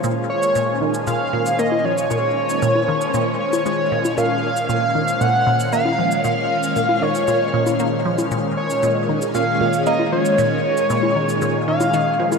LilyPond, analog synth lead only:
\new Staff \with { instrumentName = "Analog synth lead" } { \time 4/4 \key bes \minor \tempo 4 = 116 r8 des''4 r8 f''4 ees''8 des''8~ | des''2~ des''8 des''4. | f''4 f''4 ges''4 f''4 | f''4. des''2 r8 |
r8 des''4 r8 f''4 ees''8 des''8~ | des''2~ des''8 f''4. | }